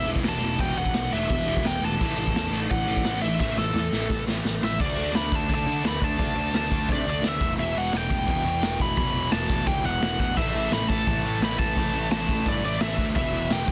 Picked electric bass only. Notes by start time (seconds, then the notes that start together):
0.06 E1
0.23 E1
0.41 E1
0.59 E1
0.78 E1
0.95 B1
1.12 E1
1.30 E1
1.47 E1
1.65 E1
1.83 E1
2.01 A1
2.17 A1
2.34 E2
2.52 A1
2.71 A1
2.87 A1
3.06 A1
3.24 A1
3.40 A1
3.57 A1
3.74 E2
3.92 A1
4.10 A1
4.27 A1
4.44 A1
4.63 A1
4.80 D2
4.95 D2
5.13 D2
5.32 D2
5.50 D2
5.66 D3
5.84 D2
6.02 D2
6.19 D2
6.35 D2
6.54 D2
6.71 D2
6.89 C3
7.05 D2
7.22 D2
7.40 E1
7.58 E1
7.76 E1
7.93 E1
8.11 E1
8.28 E1
8.45 E2
8.62 E1
8.79 E1
8.97 E1
9.15 E1
9.32 E1
9.49 E1
9.67 D2
9.85 E1
10.01 E1
10.19 E1
10.37 A1
10.53 A1
10.71 A1
10.90 A1
11.07 A1
11.23 A2
11.40 A1
11.58 A1
11.77 A1
11.93 A1
12.11 A1
12.28 A1
12.46 G2
12.64 A1
12.81 A1
12.98 D2
13.16 E1
13.33 E1
13.50 E1
13.68 E1